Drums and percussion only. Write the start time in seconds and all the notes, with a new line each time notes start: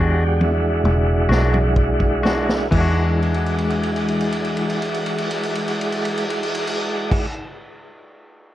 0.41 high tom
0.85 mid tom
1.32 snare
1.54 mid tom
1.76 kick
2.00 kick
2.25 snare
2.49 snare
2.72 kick, crash
3.22 crash
3.34 ride
3.46 crash
3.58 ride
3.70 crash
3.83 ride
3.96 crash
4.08 ride
4.20 crash
4.32 ride
4.45 crash
4.57 ride
4.69 crash
4.82 ride
4.94 crash
5.06 ride
5.18 crash
5.31 ride
5.43 crash
5.55 ride
5.68 crash
5.81 ride
5.92 crash
6.05 ride
6.17 crash
6.30 ride
6.43 crash
6.55 ride
6.67 crash
7.12 kick, crash